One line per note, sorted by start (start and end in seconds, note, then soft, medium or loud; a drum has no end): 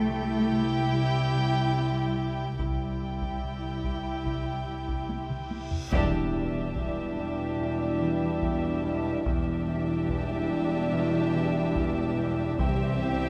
0.00 2.58 C2 medium
0.00 0.93 A3 medium
0.00 2.55 E4 medium
0.00 2.55 G4 medium
0.00 2.55 G5 medium
0.10 0.50 C3 soft
0.51 0.91 C3 soft
0.92 1.33 C3 soft
0.92 2.59 G3 medium
1.34 2.16 C3 soft
1.76 5.08 C4 soft
2.17 2.58 C3 soft
2.59 5.69 C2 soft
2.59 3.00 C3 soft
2.59 5.06 G3 soft
2.59 5.69 E4 soft
2.59 5.68 G4 soft
2.59 5.69 G5 soft
2.59 taiko medium
2.59 reverse cymbal soft
3.02 3.42 C3 soft
3.22 taiko medium
3.43 3.83 C3 soft
3.84 4.25 C3 soft
3.84 taiko medium
4.26 4.66 C3 soft
4.26 taiko medium
4.67 5.50 C3 soft
4.89 taiko medium
5.09 5.96 C4 soft
5.09 taiko high medium
5.30 taiko mid medium
5.51 5.96 C3 soft
5.51 taiko high medium
5.71 taiko low medium
5.91 9.21 E1 soft
5.91 9.22 E2 medium
5.91 6.33 E2 soft
5.91 9.22 B2 medium
5.91 9.22 G3 medium
5.91 9.22 D4 medium
5.91 9.23 D4 medium
5.91 9.23 E4 medium
5.91 9.21 G4 soft
5.91 9.22 E5 soft
5.91 taiko medium
5.91 impact soft
6.34 6.75 E2 soft
6.76 7.17 E2 soft
6.76 taiko medium
7.18 7.58 E2 soft
7.59 8.41 E2 soft
8.01 11.33 E3 soft
8.42 8.82 E2 soft
8.42 taiko medium
8.84 9.24 E2 soft
9.25 12.55 E1 soft
9.25 12.55 E2 medium
9.25 9.67 E2 medium
9.25 12.42 B2 medium
9.25 12.42 G3 medium
9.25 12.55 D4 medium
9.25 12.56 D4 medium
9.25 12.56 E4 medium
9.25 12.55 G4 soft
9.25 12.55 E5 soft
9.25 taiko medium
9.68 10.08 E2 soft
10.09 10.50 E2 soft
10.09 taiko medium
10.51 10.91 E2 soft
10.93 11.75 E2 medium
11.35 12.63 E3 medium
11.76 12.17 E2 medium
11.76 taiko medium
12.18 12.63 E2 medium
12.58 13.29 C2 medium
12.58 13.00 C3 medium
12.58 13.29 C3 medium
12.58 13.29 G3 medium
12.58 13.29 C4 medium
12.58 13.29 E4 medium
12.58 13.29 G4 medium
12.58 13.29 E5 medium
12.58 taiko medium
13.02 13.29 C3 medium